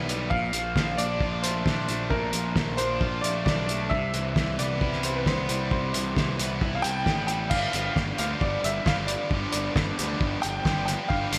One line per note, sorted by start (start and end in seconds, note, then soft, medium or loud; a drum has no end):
0.00 0.29 B1 medium
0.00 0.31 B3 medium
0.00 0.31 E4 medium
0.09 0.32 G3 medium
0.09 closed hi-hat medium
0.30 0.52 A#1 loud
0.30 1.44 A#2 medium
0.30 1.01 F5 loud
0.30 kick loud
0.53 0.75 A#1 medium
0.53 0.76 F3 medium
0.53 closed hi-hat medium
0.75 0.98 A#1 medium
0.75 1.90 F3 medium
0.75 kick loud
0.75 snare loud
0.97 1.20 A#1 medium
0.97 1.65 D4 medium
0.97 1.40 D5 medium
0.97 closed hi-hat medium
1.20 1.64 A#1 medium
1.20 2.34 F4 medium
1.20 kick loud
1.42 1.88 A3 medium
1.42 2.13 C5 medium
1.42 closed hi-hat medium
1.66 1.88 A#1 medium
1.66 2.78 D4 medium
1.66 kick loud
1.66 snare loud
1.88 2.10 A#1 medium
1.88 3.02 A3 medium
1.88 closed hi-hat medium
2.10 2.33 A#1 medium
2.10 3.24 A#2 medium
2.10 2.81 A#4 medium
2.10 kick loud
2.33 2.55 A#1 medium
2.33 2.56 F3 medium
2.33 closed hi-hat medium
2.55 2.78 A#1 medium
2.55 3.69 F3 medium
2.55 kick medium
2.55 snare loud
2.77 3.00 A#1 medium
2.77 3.46 D4 medium
2.77 3.25 C5 loud
2.77 closed hi-hat medium
3.01 3.23 A#1 medium
3.01 3.92 F4 medium
3.01 kick loud
3.21 3.46 A#1 medium
3.21 3.69 A3 medium
3.21 3.43 D5 medium
3.21 closed hi-hat medium
3.45 3.90 B1 medium
3.45 3.92 D4 medium
3.45 3.77 D5 medium
3.45 kick loud
3.45 snare loud
3.69 3.92 A3 medium
3.69 closed hi-hat medium
3.90 4.13 C2 loud
3.90 5.05 C3 medium
3.90 4.54 E5 loud
3.90 kick medium
4.14 4.35 C2 medium
4.14 4.36 E3 medium
4.14 closed hi-hat medium
4.36 4.58 C2 medium
4.36 5.50 E3 medium
4.36 kick loud
4.36 snare loud
4.59 4.80 C2 medium
4.59 5.26 B3 medium
4.59 5.06 D5 medium
4.59 closed hi-hat medium
4.81 5.25 C2 medium
4.81 5.95 E4 medium
4.81 kick loud
4.93 snare soft
5.03 5.48 G3 medium
5.03 5.14 C5 medium
5.03 closed hi-hat medium
5.16 5.26 B4 medium
5.26 5.48 C2 medium
5.26 6.39 B3 medium
5.26 5.48 C5 medium
5.26 kick medium
5.26 snare loud
5.49 5.71 C2 medium
5.49 6.62 G3 medium
5.49 5.69 C5 medium
5.49 closed hi-hat medium
5.71 5.93 C2 medium
5.71 6.85 C3 medium
5.71 7.02 C5 medium
5.71 kick loud
5.94 6.16 C2 medium
5.94 6.16 E3 medium
5.94 closed hi-hat medium
6.17 6.38 C2 medium
6.17 7.30 E3 medium
6.17 kick loud
6.17 snare medium
6.39 6.61 C2 medium
6.39 7.06 B3 medium
6.39 closed hi-hat medium
6.61 6.83 C2 medium
6.61 7.52 E4 medium
6.61 kick loud
6.75 6.83 F5 medium
6.82 7.05 C2 medium
6.82 7.29 G3 medium
6.82 7.26 G5 loud
6.82 closed hi-hat medium
7.06 7.50 A1 medium
7.06 7.52 B3 medium
7.06 kick loud
7.06 snare loud
7.27 7.52 G3 medium
7.27 7.51 G5 medium
7.27 closed hi-hat medium
7.50 7.65 G1 medium
7.50 8.21 G2 medium
7.50 8.18 D3 medium
7.50 8.20 F3 medium
7.50 8.19 G3 medium
7.50 8.17 F5 medium
7.50 kick medium
7.50 crash medium
7.54 8.18 B3 medium
7.54 8.18 G4 medium
7.73 7.88 G1 medium
7.73 closed hi-hat medium
7.96 8.11 G1 medium
7.96 kick loud
7.96 snare loud
8.18 8.33 D2 medium
8.18 8.85 G2 medium
8.18 8.85 D3 medium
8.18 8.86 F3 medium
8.18 8.87 G3 medium
8.18 8.88 B3 medium
8.18 8.89 G4 medium
8.18 8.40 F5 medium
8.18 closed hi-hat medium
8.41 8.55 G1 medium
8.41 8.65 D5 medium
8.41 kick loud
8.64 8.78 G1 medium
8.64 8.85 E5 medium
8.64 closed hi-hat medium
8.85 9.15 G1 medium
8.85 9.31 G2 medium
8.85 9.30 D3 medium
8.85 9.32 F3 medium
8.85 9.33 G3 medium
8.85 9.33 B3 medium
8.85 9.34 G4 medium
8.85 9.08 F5 medium
8.85 kick loud
8.85 snare loud
9.07 9.51 D5 medium
9.07 closed hi-hat medium
9.31 9.45 G1 medium
9.31 10.01 G2 medium
9.31 9.97 D3 medium
9.31 9.99 F3 medium
9.31 9.99 G3 medium
9.31 9.98 B3 medium
9.31 9.97 G4 medium
9.31 kick loud
9.52 9.68 G1 medium
9.52 10.16 D5 medium
9.52 closed hi-hat medium
9.76 9.90 G1 medium
9.76 kick loud
9.76 snare loud
9.98 10.14 D2 medium
9.98 10.65 G2 medium
9.98 10.65 D3 medium
9.98 10.67 F3 medium
9.98 10.67 G3 medium
9.98 10.67 B3 medium
9.98 10.68 G4 medium
9.98 closed hi-hat medium
10.21 10.35 G1 medium
10.21 kick loud
10.42 10.59 G1 medium
10.42 10.84 G5 loud
10.42 closed hi-hat medium
10.65 10.94 G1 medium
10.65 11.09 G2 medium
10.65 11.09 D3 medium
10.65 11.11 F3 medium
10.65 11.12 G3 medium
10.65 11.12 B3 medium
10.65 11.13 G4 medium
10.65 kick loud
10.65 snare loud
10.86 11.10 G5 medium
10.86 snare soft
10.86 closed hi-hat medium
11.08 11.25 G1 medium
11.08 11.38 G2 medium
11.08 11.38 D3 medium
11.08 11.38 F3 loud
11.08 11.38 G3 loud
11.08 11.38 F5 medium
11.08 kick loud
11.13 11.38 B3 medium
11.13 11.38 G4 loud
11.33 11.38 G1 medium
11.33 closed hi-hat medium